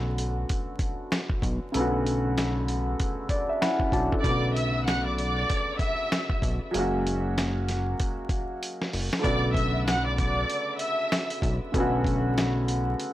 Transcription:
Already playing: analog synth bass B1, grand piano D3 A3 B3 C#4 F#4
0.18 closed hi-hat
0.49 kick, closed hi-hat
0.79 kick, closed hi-hat
1.12 snare, closed hi-hat
1.30 kick
1.42 analog synth bass B1, kick, closed hi-hat
1.72 analog synth bass B1, grand piano C#3 A3 B3, closed hi-hat
1.78 grand piano D3 C#4 F#4
2.06 closed hi-hat
2.38 snare, closed hi-hat
2.68 closed hi-hat
3.00 kick, closed hi-hat
3.29 grand piano D5, kick, closed hi-hat
3.49 grand piano E5
3.61 grand piano C#4 E4 F#5, snare, closed hi-hat
3.80 kick
3.92 analog synth bass B1, grand piano D4 F#4 A5, kick, closed hi-hat
4.12 grand piano F#4 A4, kick
4.22 analog synth bass B1, grand piano D3 A3 B3, violin section D5 D6, kick, closed hi-hat
4.27 grand piano C#3 F#4
4.55 violin section E5 E6, closed hi-hat
4.86 violin section F#5 F#6, snare, closed hi-hat
5.05 violin section D5 D6
5.18 violin section D5 D6, closed hi-hat
5.50 kick, closed hi-hat
5.79 violin section E5 E6, kick, closed hi-hat
6.12 snare, closed hi-hat
6.30 kick
6.42 analog synth bass B1, kick, closed hi-hat
6.71 analog synth bass F#1, grand piano F#3 G#3 A#3, closed hi-hat
6.77 grand piano C#4 F#4
7.07 closed hi-hat
7.38 snare, closed hi-hat
7.69 snare, closed hi-hat
8.00 kick, closed hi-hat
8.29 kick, closed hi-hat
8.63 closed hi-hat
8.82 snare
8.93 analog synth bass F#1, open hi-hat
9.13 snare
9.19 grand piano D3 A3 B3
9.24 analog synth bass B1, grand piano C#3 F#4, violin section D5 D6, kick, closed hi-hat
9.54 violin section E5 E6, kick, closed hi-hat
9.87 violin section F#5 F#6, snare, closed hi-hat
10.06 violin section D5 D6
10.18 violin section D5 D6, kick, closed hi-hat
10.50 closed hi-hat
10.79 violin section E5 E6, closed hi-hat
11.12 snare, closed hi-hat
11.30 closed hi-hat
11.42 analog synth bass B1, kick, closed hi-hat
11.72 analog synth bass B1, grand piano C#3 A3 B3, kick, closed hi-hat
11.78 grand piano D3 C#4 F#4
12.04 kick, closed hi-hat
12.38 snare, closed hi-hat
12.68 closed hi-hat
13.00 closed hi-hat

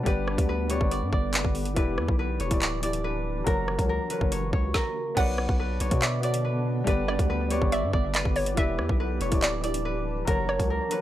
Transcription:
Already playing: ambient pad B3, harp D5
0.03 808-style bass G1, ambient pad D3 G4, grand piano G3 G4 B4, harp B4, kick, closed hi-hat
0.08 grand piano D5
0.28 cross-stick
0.36 808-style bass D2, grand piano G3 G4 B4, kick, closed hi-hat
0.41 grand piano D5
0.49 harp B4
0.68 grand piano G3 G4 B4, harp C#5, closed hi-hat
0.73 grand piano D5
0.78 808-style bass G1, grand piano G3 G4 B4, kick
0.83 grand piano D5
0.91 harp D5, closed hi-hat
1.02 808-style bass G2
1.13 808-style bass G1, harp D5, kick
1.33 808-style bass F#1, harp B4, clap, closed hi-hat
1.44 808-style bass G1, kick
1.55 open hi-hat
1.65 closed hi-hat
1.74 808-style bass E1, grand piano E3 E4 G4, ambient pad E3 D4, harp B4, kick, closed hi-hat
1.79 grand piano D5
1.98 808-style bass E2, cross-stick
2.08 808-style bass B1, kick
2.19 harp B4
2.40 808-style bass E1, harp C#5, closed hi-hat
2.48 808-style bass D1, grand piano E3 E4 G4, kick, closed hi-hat
2.53 grand piano D5
2.62 harp D5, clap, closed hi-hat
2.81 grand piano E3 E4 G4, harp D5, closed hi-hat
2.86 grand piano D5
2.93 closed hi-hat
3.04 harp B4
3.44 808-style bass F#1, ambient pad C#3 A#3 F#4, grand piano F#3 F#4 A#4, harp A#4, kick, closed hi-hat
3.49 grand piano C#5
3.68 cross-stick
3.76 808-style bass C#2, grand piano F#3 F#4 A#4, kick, closed hi-hat
3.81 grand piano C#5
3.89 harp A#4
4.08 grand piano F#3 F#4 A#4, harp B4, closed hi-hat
4.13 grand piano C#5
4.19 808-style bass F#1, grand piano F#3 F#4 A#4, kick
4.24 grand piano C#5
4.32 harp C#5, closed hi-hat
4.53 808-style bass C#2, harp C#5, kick
4.74 harp A#4, kick, snare
5.15 808-style bass B1, ambient pad D3 B3 D4, grand piano B3 F#4 C#5, harp B4, synth pluck F#5, kick, closed hi-hat, crash
5.20 grand piano D5
5.38 cross-stick
5.49 808-style bass B1, kick
5.59 harp B4
5.80 808-style bass B1, harp C#5, closed hi-hat
5.89 808-style bass B2, grand piano B3 F#4 C#5, kick, closed hi-hat
5.94 grand piano D5
6.02 harp D5, synth pluck E5, clap, closed hi-hat
6.20 grand piano B3 F#4 C#5, harp D5, closed hi-hat
6.25 grand piano D5
6.34 closed hi-hat
6.45 harp B4
6.84 808-style bass G1, ambient pad D3 G4, grand piano G3 G4 B4, harp B4, kick, closed hi-hat
6.89 grand piano D5
7.08 synth pluck D5, cross-stick
7.17 808-style bass D2, grand piano G3 G4 B4, kick, closed hi-hat
7.22 grand piano D5
7.30 harp B4
7.48 grand piano G3 G4 B4, harp C#5, closed hi-hat
7.53 grand piano D5
7.59 808-style bass G1, grand piano G3 G4 B4, kick
7.64 grand piano D5
7.72 harp D5, synth pluck E5, closed hi-hat
7.83 808-style bass G2
7.93 808-style bass G1, harp D5, kick
8.14 808-style bass F#1, harp B4, synth pluck D5, clap, closed hi-hat
8.25 808-style bass G1, kick
8.36 synth pluck C#5, open hi-hat
8.46 closed hi-hat
8.55 808-style bass E1, grand piano E3 E4 G4, ambient pad E3 D4, harp B4, synth pluck E5, kick, closed hi-hat
8.60 grand piano D5
8.79 808-style bass E2, cross-stick
8.89 808-style bass B1, kick
9.00 harp B4
9.21 808-style bass E1, harp C#5, closed hi-hat
9.29 808-style bass D1, grand piano E3 E4 G4, kick, closed hi-hat
9.34 grand piano D5
9.42 synth pluck D5, harp D5, clap, closed hi-hat
9.61 grand piano E3 E4 G4, harp D5, closed hi-hat
9.66 grand piano D5
9.74 closed hi-hat
9.85 harp B4
10.25 808-style bass F#1, grand piano F#3 F#4 A#4, ambient pad A#3 F#4, harp A#4, kick, closed hi-hat
10.30 grand piano C#5
10.49 synth pluck C#5, cross-stick
10.57 808-style bass C#2, grand piano F#3 F#4 A#4, kick, closed hi-hat
10.62 grand piano C#5
10.70 harp A#4
10.89 grand piano F#3 F#4 A#4, harp B4, closed hi-hat
10.94 grand piano C#5

